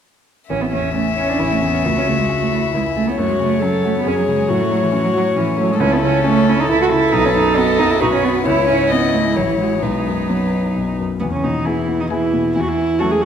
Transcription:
0.50 A1 C#4 E5
0.61 B3
0.72 E2 C#4
0.95 A3 C#4
1.17 C#4 E4
1.29 D4
1.40 A1 E4
1.51 A3
1.62 E2 B3
1.85 C#2 A3 F#4
1.97 C#4
2.07 C#3 A3
2.19 G#3
2.29 C#4
2.41 A3
2.52 A3 E4
2.74 C#2 G#3 E4
2.96 C#3 A3
3.07 B3
3.18 F#2 A3 F#4 C#5
3.30 G#3
3.40 C#3 A3
3.62 F#3 C#4 A4
3.84 A3 F#4
3.97 B3
4.06 F#2 C#4 G#4
4.18 F#3
4.28 C#3 G#3
4.49 A2 F#3 F#4
4.61 A3
4.71 F#3 A3
4.83 E3
4.92 C#4 F#4
5.04 F#3
5.14 F#3 F#4
5.36 A2 E3 C#4
5.58 F#3 A3
5.71 G#3
5.80 C#2 C#4 E4 A4
5.92 B3
6.03 C#3 C#4
6.24 A3 C#4
6.47 C#4 E4
6.60 D#4
6.68 C#2 E4 A4
6.82 F#4
6.90 C#3 E4
7.11 B1 D#4 B4
7.25 C#4
7.35 F#2 D#4
7.57 B3 F#4 D#5
7.79 F#2 D#4
7.90 E4
8.01 B1 D#4 F#4 B4
8.13 C#4
8.24 B3 F#4
8.46 C#2 E4 C#5
8.68 G#2 C#4
8.90 B3 C#4 D#5
9.14 A3 E4
9.25 G#3
9.36 A1 F#3 C#5
9.48 E3
9.58 G#3 E4 F#4
9.81 B1 G#3 D#4 B4
10.07 F#2
10.29 F#3 B3
10.54 D#4
10.76 B1
10.99 F#2
11.20 E2 B2 B3
11.32 C#3 C#4
11.43 B2 D#3 D#4
11.65 E3 B3 E4 G#4 G#5
11.88 B3
12.00 D#3 D#4
12.10 E3 B3 E4 G#4 G#5
12.33 B2
12.54 E2 E3 E4
12.61 F#4
12.68 E4
12.77 E3
12.99 F#3 A3 C#4 F#4 A4 A5
13.10 G#3 G#4
13.21 F#3 F#4

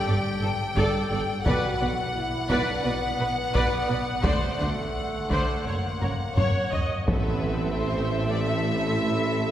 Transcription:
Already playing: G4 G5
0.07 G1 G2 A4 D5
0.42 G1 G2 A4
0.76 G1 G2 A4 D5, taiko
1.11 G1 G2 A4 D5
1.45 B1 B2 F#4 B4 D5 F#5, taiko
1.80 B1 B2 B4 D5
2.15 E4
2.50 B1 B2 B4 D5, taiko
2.68 D4
2.84 B1 B2 B3 B4 D5
3.19 B1 B2 B4
3.54 B1 B2 B4 D5, taiko
3.89 B1 B2 B4 D5
4.23 D2 D3 A3 C5 D5, taiko
4.59 D2 D3 C5 D5
5.30 D2 D3 C5 D5, taiko
5.66 F#1 F#2 A#3 C#5
6.01 F#1 F#2 A#4 C#5, taiko low-mid
6.36 F#1 F#2 C#5, taiko low-mid
6.71 F#1 F#2 C#5 D#5, taiko low
7.07 A1 A2 E3 A3 B3 C4 A4 B4 E5, taiko
7.77 C4 C5
8.30 D4 D5
8.47 E4 E5

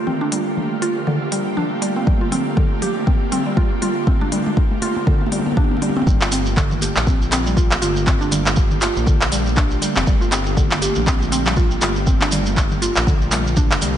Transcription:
Already playing: G1 D3 A3 A#3 F4 G4
0.07 C4, mid tom
0.21 D4
0.32 G3, open hi-hat
0.57 mid tom
0.82 F4, open hi-hat
0.96 A#1
1.07 D3, mid tom
1.32 G3, open hi-hat
1.57 D4, mid tom
1.82 G3, open hi-hat
1.96 F1 C4
2.07 G1 G3, kick, mid tom
2.21 F4
2.32 C4, open hi-hat, mid tom
2.57 D3, kick, mid tom
2.82 G4, open hi-hat, mid tom
2.96 A#1
3.07 C4, kick, mid tom
3.32 C4, open hi-hat, mid tom
3.46 G3
3.57 F4, kick, mid tom
3.82 G1 F4, open hi-hat, mid tom
4.07 C4, kick, mid tom
4.21 D4, mid tom
4.32 G3, open hi-hat, mid tom
4.46 mid tom
4.57 kick, mid tom
4.71 mid tom
4.82 F4, open hi-hat, mid tom
4.96 A#1, mid tom
5.07 D3, kick, mid tom
5.14 mid tom
5.21 mid tom
5.26 mid tom
5.32 G3, open hi-hat, mid tom
5.39 mid tom
5.46 mid tom
5.52 mid tom
5.57 D4, kick, mid tom
5.64 mid tom
5.71 mid tom
5.77 mid tom
5.82 G3, open hi-hat, mid tom
5.89 mid tom
5.96 C4, mid tom
6.02 mid tom
6.07 G1 D3 G3 A3 A#3 F4 G4, kick, shekere
6.21 F4, clap, shekere
6.32 C4, open hi-hat, shekere
6.46 shekere
6.57 D3, kick, clap, shekere
6.71 mid tom, shekere
6.82 G4, open hi-hat, shekere
6.96 A#1, clap, shekere
7.07 C4, kick, shekere
7.22 shekere
7.32 C4, clap, open hi-hat, shekere
7.46 G3, shekere
7.57 F4, kick, shekere
7.71 clap, shekere
7.82 G1 F4, open hi-hat, shekere
7.97 shekere
8.07 C4, kick, clap, shekere
8.21 D4, shekere
8.32 G3, open hi-hat, mid tom, shekere
8.46 clap, shekere
8.56 kick, shekere
8.71 mid tom, shekere
8.81 F4, clap, open hi-hat, shekere
8.96 A#1, shekere
9.07 D3, kick, shekere
9.21 clap, shekere
9.32 G3, open hi-hat, shekere
9.46 shekere
9.56 D4, kick, clap, shekere
9.71 shekere
9.82 G3, open hi-hat, shekere
9.96 F1 C4, clap, shekere
10.07 G1 G3, kick, shekere
10.21 F4, shekere
10.32 C4, clap, open hi-hat, shekere
10.46 shekere
10.57 D3, kick, shekere
10.71 clap, mid tom, shekere
10.82 G4, open hi-hat, shekere
10.95 A#1, shekere
11.07 C4, kick, clap, shekere
11.22 shekere
11.32 C4, open hi-hat, shekere
11.46 G3, clap, shekere
11.56 F4, kick, shekere
11.71 shekere
11.81 G1 F4, clap, open hi-hat, shekere
11.96 shekere
12.07 C4, kick, shekere
12.21 D4, clap, shekere
12.31 G3, open hi-hat, mid tom, shekere
12.46 shekere
12.57 kick, clap, shekere
12.71 mid tom, shekere
12.82 F4, open hi-hat, shekere
12.96 A#1, clap, shekere
13.07 D3, kick, shekere
13.22 shekere
13.31 G3, clap, open hi-hat, shekere
13.47 shekere
13.56 D4, kick, shekere
13.71 F1, clap, shekere
13.81 C2 G3, open hi-hat, shekere

